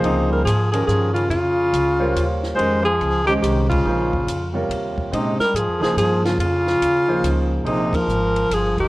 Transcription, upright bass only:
0.02 0.44 C#2 medium
0.45 0.86 G#2 medium
0.88 1.29 G2 medium
1.29 1.71 F2 medium
1.73 2.14 C#2 medium
2.16 2.56 D#2 medium
2.59 2.99 F2 medium
3.00 3.41 C#2 medium
3.42 3.83 C2 medium
3.85 4.26 A#1 medium
4.27 4.68 F2 medium
4.69 5.10 D#2 medium
5.12 5.37 A#2 medium
5.39 muted upright bass stroke soft
5.53 5.68 G#2 medium
5.68 5.82 F2 soft
5.82 5.95 C#2 medium
5.96 6.37 G2 medium
6.38 6.79 F2 medium
6.81 7.22 D#2 medium
7.23 7.64 C#2 medium
7.65 8.06 A#1 medium
8.08 8.49 G#1 medium
8.50 8.88 G1 medium

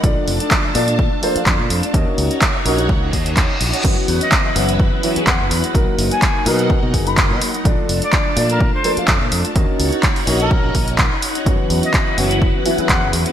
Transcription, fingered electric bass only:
0.04 0.14 A#1 loud
0.27 0.38 F1 loud
0.75 1.08 A#2 loud
1.35 muted fingered electric bass stroke soft
1.46 1.57 F2 loud
1.59 1.68 A#2 medium
1.70 1.80 F2 loud
1.94 2.04 D#2 loud
2.18 2.28 C#2 loud
2.65 2.89 A#1 medium
2.89 3.09 C#2 medium
3.13 3.46 D#2 medium
3.61 3.71 A#1 medium
3.84 3.95 F#2 loud
4.08 4.19 E2 loud
4.56 4.88 F#1 loud
5.16 muted fingered electric bass stroke soft
5.27 5.38 E2 loud
5.40 5.49 F#1 medium
5.51 5.61 E2 loud
5.75 5.85 B1 loud
5.98 6.09 F#1 loud
6.46 6.79 B2 loud
6.83 6.92 B2 medium
6.94 7.32 F#1 loud
7.30 7.39 B2 loud
7.65 7.76 A#1 loud
7.89 8.00 F1 loud
8.37 8.69 A#2 loud
8.97 muted fingered electric bass stroke soft
9.08 9.19 F2 loud
9.21 9.30 A#2 medium
9.32 9.42 F2 loud
9.56 9.66 D#2 loud
9.79 9.90 C#2 loud
10.27 10.60 A#1 medium
10.64 10.73 A#1 medium
10.75 11.08 A#1 loud
11.46 11.57 F#2 loud
11.70 11.80 E2 loud
12.18 12.50 F#1 medium
12.78 muted fingered electric bass stroke soft
12.89 13.00 E2 loud
13.02 13.11 F#1 medium
13.13 13.23 E2 loud

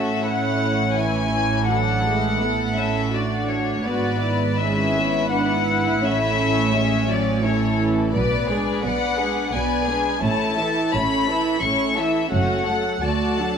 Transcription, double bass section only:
0.00 3.81 A1 soft
3.85 6.02 G#1 soft
6.02 8.10 A1 medium
8.14 8.73 B1 medium
8.84 9.42 B1 medium
9.53 10.11 B1 soft
10.22 10.82 A1 medium
10.93 11.52 A1 medium
11.62 12.21 A1 soft
12.32 12.91 F#1 medium
13.02 13.58 D2 soft

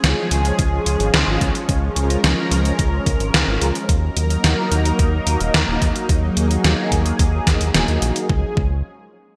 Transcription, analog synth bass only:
0.04 0.14 C#2 medium
0.31 0.52 C#2 medium
0.59 0.80 C#2 medium
0.86 0.97 C#2 medium
1.00 1.10 G#1 loud
1.14 1.24 C#2 medium
1.27 1.38 G#1 medium
1.41 1.52 C#2 medium
1.69 1.90 C#2 loud
1.96 2.17 C#2 medium
2.24 2.34 C#2 medium
2.51 2.72 C#2 medium
2.79 3.00 C#2 medium
3.06 3.17 C#2 medium
3.20 3.31 G#1 loud
3.34 3.44 C#2 medium
3.48 3.58 G#1 loud
3.61 3.72 C#2 medium
3.89 4.10 D#2 loud
4.16 4.37 D#2 medium
4.44 4.54 D#2 medium
4.71 4.92 D#2 medium
4.99 5.20 D#2 medium
5.27 5.37 D#2 medium
5.40 5.51 D#1 loud
5.54 5.65 D#2 medium
5.68 5.78 D#1 loud
5.82 5.92 D#2 medium
6.09 6.30 D#2 loud
6.37 6.58 D#2 medium
6.64 6.75 D#2 medium
6.92 7.13 D#2 medium
7.19 7.40 D#2 medium
7.47 7.57 D#2 medium
7.61 7.71 D#2 medium
7.74 7.85 D#1 loud
7.88 7.99 D#2 medium
8.02 8.12 A#1 medium
8.29 8.45 C#2 medium
8.57 8.83 C#2 medium

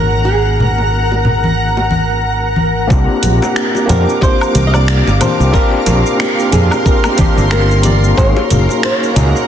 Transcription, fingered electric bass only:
0.00 2.87 G#1 medium
2.91 3.06 C2 loud
3.23 3.39 A#1 medium
3.89 4.05 F2 medium
4.55 5.01 C2 medium
5.07 5.18 G1 medium
5.40 5.51 C2 medium
5.87 6.02 A#1 medium
6.53 6.68 F2 medium
7.38 8.13 G1 medium
8.18 8.33 G#1 loud
8.51 8.66 F#1 medium
9.16 9.32 C#2 medium

